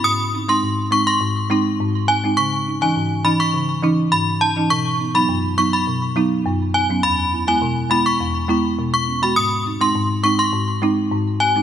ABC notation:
X:1
M:4/4
L:1/16
Q:1/4=103
K:G#phr
V:1 name="Synth bell"
d' z2 ^b z2 c' b z6 g z | c' z2 g z2 b c' z4 b z a z | c' z2 b z2 c' b z6 g z | b z2 g z2 b c' z4 z c' z b |
d' z2 ^b z2 c' b z6 g z |]
V:2 name="Marimba"
z2 [^B,D] [G,B,D] z2 [G,B,D] z3 [G,B,D] z3 [B,D] [G,B,D] | z2 [CD] [E,CD] z2 [E,CD] z3 [E,CD] z3 [CD] [E,CD] | z2 [B,D] [F,B,D] z2 [F,B,D] z3 [F,B,D] z3 [B,D] [F,B,C] | z2 [B,E] [G,B,E] z2 [G,B,E] z3 [G,B,E] z3 [B,C] [G,B,F] |
z2 [^B,D] [G,B,D] z2 [G,B,D] z3 [G,B,D] z3 [B,F] [G,B,D] |]
V:3 name="Marimba" clef=bass
G,,4 G,,4 G,,4 G,,4 | C,4 G,,4 C,4 G,,4 | B,,4 F,,4 B,,4 F,,4 | E,,4 B,,4 E,,4 B,,4 |
G,,4 G,,4 G,,4 G,,4 |]